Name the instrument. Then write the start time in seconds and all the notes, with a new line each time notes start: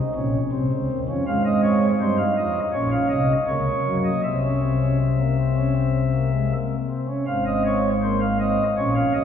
pipe organ
Already playing: D#4
0.15 A#1 A#2 C#4
0.52 C2 C3 C4
0.71 C#2 C#3
0.91 D#2 D#3
1.08 F2 F3 C#4
1.27 G#2 G#3 C4 F5
1.46 D#5
1.63 C#5
2.00 G2 G3 D#4 C5
2.18 F5
2.37 F2 F3 D#5
2.73 A#1 A#2 C#4 C#5
2.92 F5
3.09 C2 C3 D#5
3.47 C#2 C#3 A#3 C#5
3.85 F#2 F#3
4.05 D#5
4.24 C2 C3 C4 E5
4.44 C#4
4.62 C4
4.81 C#4
5.01 C4
5.19 A#3
5.39 C4
5.57 C#4
5.75 C4
6.14 A#3
6.33 G#3
6.51 A#3
6.90 C4
7.08 C#4
7.26 G#1 G#2 C4 F5
7.46 D#5
7.66 C#5
8.03 A#3 C5
8.21 F5
8.40 C4 D#5
8.77 A#1 A#2 C#4 C#5
8.96 F5
9.14 C2 C3 D#5